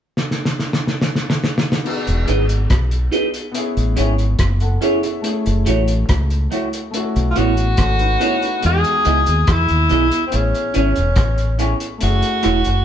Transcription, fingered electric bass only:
2.08 E1
2.29 G#1
2.71 B1
3.77 A1
3.98 G#1
4.40 F#1
5.47 F#1
5.67 A1
6.10 C#2
7.16 B1
7.37 A1
7.79 G#1
8.65 E2
9.06 C#2
9.28 D#2
9.48 E2
9.70 D#2
9.91 B1
10.34 A1
10.76 G#1
10.97 E1
11.17 A1
12.03 F#1
12.45 E1
12.67 F#1

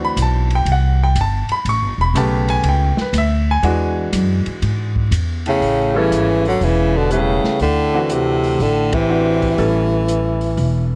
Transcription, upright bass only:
Already playing: D2
0.16 B1
0.65 C2
1.15 G1
1.49 muted upright bass stroke
1.65 A1
1.82 G1
1.98 E1
2.14 B1
2.63 C#2
2.97 muted upright bass stroke
3.13 D2
3.63 E2
4.13 F#2
4.46 muted upright bass stroke
4.62 G#2
5.11 E2
5.61 A1
6.11 G#1
6.61 E1
7.44 muted upright bass stroke
7.60 D2
8.59 A1
9.58 A1
10.57 E1

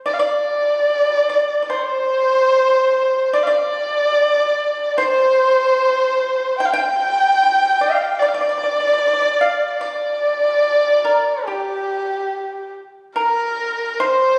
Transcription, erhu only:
0.06 D5
0.13 F5
0.20 D5
1.71 C5
3.34 D5
3.43 F5
3.48 D5
4.90 D5
4.96 C5
6.58 G5
6.65 F5
6.71 G5
8.19 D5
8.28 F5
8.34 D5
9.80 D5
11.46 G4
13.16 A#4
14.00 C5

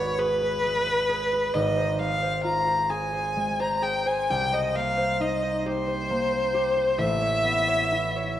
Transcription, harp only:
Already playing: G#1 G#3 F#4 G#4 B4
0.18 G#4
0.41 B4
0.64 G#3
0.87 B4
1.09 G#4
1.33 B4
1.55 G#1
1.77 C5
1.99 G#3
2.22 C5
2.44 F4
2.67 C5
2.90 G#4
3.13 C5
3.36 G#3
3.60 C5
3.82 G#4
4.06 C5
4.30 C2
4.52 C5
4.75 A#3
4.97 C5
5.20 D#4
5.43 C5
5.66 G4
5.87 C5
6.10 A#3
6.33 C5
6.54 G4
6.77 C5
6.98 A1
7.21 C#5
7.44 B3
7.68 C#5
7.92 E4
8.16 C#5

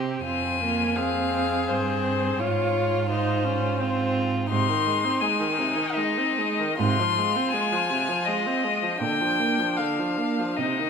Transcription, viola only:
Already playing: C4
0.26 C4
0.61 A#3
0.96 C4
1.70 C4
2.40 F4
3.10 D#4
3.44 C#4
3.80 C4
4.51 C3
4.69 D#3
4.87 G#3
5.04 C4
5.22 G#3
5.40 D#3
5.58 C3
5.76 D#3
5.96 G#3
6.18 C4
6.38 G#3
6.59 D#3
6.80 C3
6.99 F3
7.18 G#3
7.36 C4
7.53 G#3
7.72 F3
7.90 C3
8.08 F3
8.27 G#3
8.46 C4
8.64 G#3
8.82 F3
9.02 D3
9.21 F3
9.39 A#3
9.59 F3
9.79 D3
9.99 F3
10.18 A#3
10.39 F3
10.59 C3
10.79 D#3

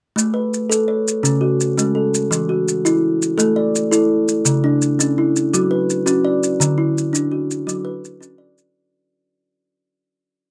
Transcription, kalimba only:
0.16 A3
0.34 B4
0.70 A4
0.88 C#5
1.23 C#3 C#4
1.41 F#4
1.77 G#3 C#4
1.95 A4
2.31 E3
2.49 F#4
2.85 E4
3.38 A3 A4
3.56 D5
3.91 E4 A4
4.45 C#3
4.64 D4
4.99 C#4
5.18 E4
5.54 F#3 F#4
5.71 B4
6.06 C#4 F#4
6.25 D5
6.60 D3
6.78 E4
7.13 D4
7.32 F#4
7.67 F#3 F#4
7.85 B4
8.21 C#4 F#4
8.38 D5

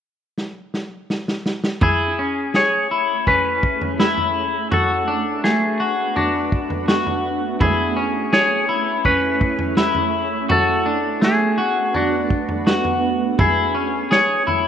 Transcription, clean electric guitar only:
1.82 E4
2.19 C#4
2.55 G#4
2.91 E4
3.27 C#4
4.00 E4
4.71 F#4
5.08 D4
5.44 A3
5.80 F#4
6.16 D4
6.88 F#4
7.60 E4
7.96 C#4
8.33 G#4
8.69 E4
9.05 C#4
9.77 E4
10.49 F#4
10.86 D4
11.22 A3
11.58 F#4
11.94 D4
12.67 F#4
13.39 E4
13.75 C#4
14.11 G#4
14.47 E4

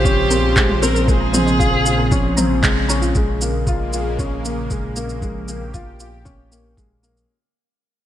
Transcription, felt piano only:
Already playing: G#3 C4 F4
0.05 C#4
0.31 C4
0.56 G#3
0.82 C4
1.08 G#3
1.34 C4
1.59 F4
1.85 F4
2.12 C#4
2.38 C4
2.64 G#3
2.90 C#4
3.16 G#3
3.42 A#3
3.68 F4
3.93 F4
4.19 C#4
4.45 A#3
4.71 G#3
4.97 A#3
5.22 G#3
5.48 A#3
5.74 F4
6.00 F4
6.25 C#4
6.51 A#3
6.77 G#3
7.03 A#3

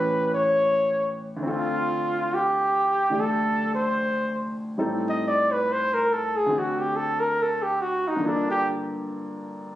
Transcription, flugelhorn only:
Already playing: B4
0.34 C#5
1.49 F4
2.35 G4
3.20 A4
3.75 C5
5.09 D#5
5.28 D5
5.53 B4
5.72 C5
5.94 A#4
6.13 A4
6.36 G#4
6.59 F#4
6.79 G4
6.96 A4
7.20 A#4
7.42 A4
7.63 G4
7.81 F#4
8.08 D#4
8.27 D4
8.51 G4

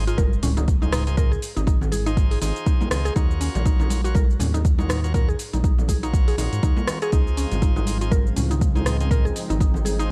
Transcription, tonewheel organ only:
0.08 D#4 F4 G#4 C5
0.82 D#4 F4 G#4 C5
1.07 D#4 F4 G#4 C5
1.18 D#4 F4 G#4 C5
2.06 D#4 F4 G#4 C5
2.42 D#4 F4 G#4 C5
2.91 D#4 F4 G#4 C5
3.16 F4 F#4 A#4 C#5
4.05 F4 F#4 A#4 C#5
4.79 F4 F#4 A#4 C#5
5.04 F4 F#4 A#4 C#5
5.14 F4 F#4 A#4 C#5
6.03 F4 F#4 A#4 C#5
6.38 F4 F#4 A#4 C#5
7.02 F4 F#4 A#4 C#5
7.12 D#4 F4 G#4 C5
8.01 D#4 F4 G#4 C5
8.76 D#4 F4 G#4 C5
9.01 D#4 F4 G#4 C5
9.11 D#4 F4 G#4 C5
10.00 D#4 F4 G#4 C5

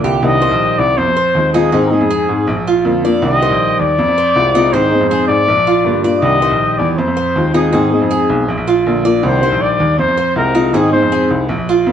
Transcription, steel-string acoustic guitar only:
Already playing: D3 A#3 D4 F4
0.23 C3 D#3 G3 D4 G4
0.41 D#3 G3 G4
0.98 muted steel-string acoustic guitar stroke
1.36 F3 G#3 C4 F4
1.54 F3 G#3 C4 F4
1.73 D#3 G#3 C4 D#4 G#4
1.91 G#3 C4 D#4 G#4
2.49 muted steel-string acoustic guitar stroke
2.85 D3 A#3 D4 F4
3.04 A#3 D4 F4
3.23 C3 D#3 G3 D4 G4
3.41 D#3 G3 G4
3.97 muted steel-string acoustic guitar stroke
4.35 F3 G#3 C4 F4
4.54 F3 G#3 C4 F4
4.73 D#3 G#3 C4 D#4 G#4
4.92 G#3 C4 D#4 G#4
5.48 muted steel-string acoustic guitar stroke
5.85 D3 A#3 D4 F4
6.03 A#3 D4 F4
6.22 C3 D#3 G3 D4 G4
6.41 D#3 G3 G4
6.98 muted steel-string acoustic guitar stroke
7.36 F3 G#3 C4 F4
7.54 F3 G#3 C4 F4
7.73 D#3 G#3 C4 D#4 G#4
7.92 G#3 C4 D#4 G#4
8.49 muted steel-string acoustic guitar stroke
8.86 D3 A#3 D4 F4
9.05 A#3 D4 F4
9.23 C3 D#3 G3 D4 G4
9.41 D#3 G3 D4 G4
9.98 muted steel-string acoustic guitar stroke
10.36 F3 G#3 C4 F4
10.55 F3 G#3 C4 F4
10.73 D#3 G#3 C4 D#4 G#4
10.92 G#3 C4 D#4 G#4
11.49 muted steel-string acoustic guitar stroke
11.88 D3 A#3 D4 F4

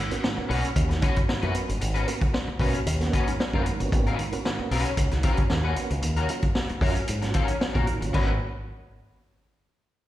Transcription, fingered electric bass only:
0.11 muted fingered electric bass stroke
0.38 muted fingered electric bass stroke
0.50 B1
0.76 D#2
1.29 muted fingered electric bass stroke
1.43 F#2
1.69 G1
1.81 G#1
2.22 muted fingered electric bass stroke
2.48 muted fingered electric bass stroke
2.59 B1
2.86 D#2
3.40 muted fingered electric bass stroke
3.54 F#2
3.80 G1
3.92 G#1
4.33 muted fingered electric bass stroke
4.59 muted fingered electric bass stroke
4.71 B1
4.97 C#2
5.51 D#2
5.91 C#2
6.03 D#2
6.43 muted fingered electric bass stroke
6.70 muted fingered electric bass stroke
6.81 F#2
7.09 G#2
7.62 muted fingered electric bass stroke
7.75 A#2
8.02 G1
8.14 G#1

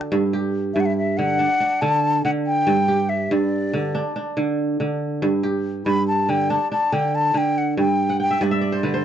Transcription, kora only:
Already playing: D3 D4 F#4 A4
0.12 G2
0.33 G4
0.76 G2
1.19 D3
1.39 D4
1.60 D4
1.82 D3
2.25 D3
2.67 G2
2.88 G4
3.31 G2
3.73 D3
3.95 D4
4.16 D4
4.37 D3
4.80 D3
5.22 G2
5.43 G4
5.86 G2
6.29 D3
6.50 D4
6.72 D4
6.92 D3
7.34 D3
7.77 G2
8.09 F#5
8.20 G5
8.31 E5
8.41 G2 D5
8.51 E5
8.61 D5
8.72 C5
8.83 D3 B4
8.94 C5

